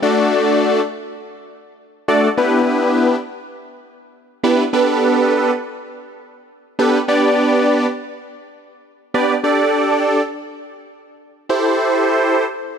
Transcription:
0.02 A3 D4 F#4 A4 D5
2.08 A3 D4 F#4 A4 D5
2.37 B3 D4 E4 G4 B4
4.43 B3 D4 E4 G4 B4
4.73 B3 D4 G4 A4 B4
6.79 B3 D4 G4 A4 B4
7.08 B3 D4 G4 B4 D5
9.14 B3 D4 G4 B4 D5
9.44 D4 G4 A4 D5
11.49 E4 G4 A4 C5

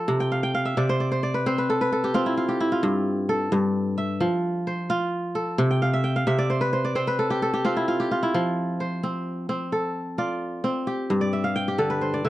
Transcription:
Already playing: F3 F4 A4 C5
0.08 C3
0.20 G5
0.32 F5
0.43 G5
0.55 F5
0.65 E5
0.77 C3 D5
0.89 C5
1.00 D5
1.12 C5
1.23 D5
1.34 B4
1.46 C4 C5
1.58 B4
1.70 A4
1.81 B4
1.92 A4
2.04 G4
2.14 C4 F4
2.26 E4
2.37 F4
2.49 G4
2.60 E4
2.72 F4
2.83 G2
3.29 A4
3.52 G2
3.98 E5
4.20 F3
4.67 C5
4.90 F4
5.35 A4
5.58 C3
5.71 G5
5.82 F5
5.93 E5
6.04 G5
6.16 F5
6.27 C3 E5
6.39 D5
6.50 C5
6.61 B4
6.73 C5
6.85 D5
6.95 C4 C5
7.07 B4
7.19 A4
7.30 G4
7.42 A4
7.54 G4
7.65 C4 F4
7.77 E4
7.88 F4
8.00 G4
8.11 F4
8.23 E4
8.34 F3
8.80 C5
9.03 C4
9.49 C4
9.72 A4
10.18 F4 D5
10.64 C4
10.87 G4
11.10 G2
11.21 D5
11.33 E5
11.44 F5
11.56 G5
11.68 G4
11.78 D3 A4
11.90 B4
12.01 C5
12.14 D5
12.25 D3 E5

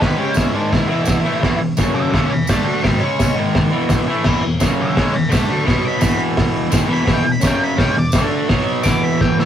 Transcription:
0.00 G#2 D#3 G#3 B4, kick, snare, open hi-hat
0.16 C#3 G#3 C#4 G4
0.34 E4, kick, snare, open hi-hat, tambourine
0.53 G#2 D#3 G#3 D4
0.72 E4, kick, snare, open hi-hat
0.87 E2 B2 E3 E4
1.05 kick, snare, open hi-hat, tambourine
1.23 A2 E3 A3
1.41 E2 B2 E3, kick, snare, open hi-hat
1.59 E2 B2
1.77 F#2 C#3 F#3, kick, snare, open hi-hat, tambourine
1.95 D5 F#5
2.11 C#3 G#3 C#4 D5 F#5, kick, snare, open hi-hat
2.31 E2 B2 G#5 B5
2.47 D3 A3 D4 G5 B5, kick, snare, open hi-hat, tambourine
2.65 B5 D6
2.82 G#2 D#3 G#3, kick, snare, open hi-hat
2.86 B5 D6
2.99 C#3 G#3 C#4
3.04 C#6
3.19 kick, snare, open hi-hat, tambourine
3.35 G#2 D#3 G#3
3.55 kick, snare, open hi-hat
3.71 E2 B2 E3
3.89 kick, snare, open hi-hat, tambourine
4.08 A2 E3 A3
4.24 E2 B2 E3, kick, snare, crash
4.44 E2 B2
4.60 F#2 C#3 F#3, kick, snare, open hi-hat, tambourine
4.80 D5 F#5
4.95 C#3 G#3 C#4 D5 F#5, kick, snare, open hi-hat
5.14 E2 B2 G#5 B5
5.29 D3 A3 D4 G5 B5, kick, snare, open hi-hat, tambourine
5.50 B5 D6
5.65 B2 F#3 B3 B5 D6, kick, snare, open hi-hat
5.88 B5
5.98 E2 B2 E3, tambourine
6.02 kick, snare, open hi-hat
6.37 kick, snare, open hi-hat
6.70 G#2 D#3 G#3, kick, snare, open hi-hat, tambourine
6.87 E2 B2 E3
6.93 B5
7.05 E2 B2 E3, kick, snare, open hi-hat
7.14 G5
7.24 E2 B2
7.32 B5
7.40 F#2 C#3 F#3, kick, snare, open hi-hat, tambourine
7.47 G5
7.64 B5
7.76 C#3 G#3 C#4 G5, kick, snare, open hi-hat
7.96 E2 B2 D5
8.12 D3 A3 D4, kick, snare, open hi-hat, tambourine
8.49 B2 F#3 B3, kick, snare, open hi-hat
8.83 E2 B2 E3 D6, kick, snare, open hi-hat, tambourine
9.03 B5
9.21 G5, kick, snare
9.39 E5, snare

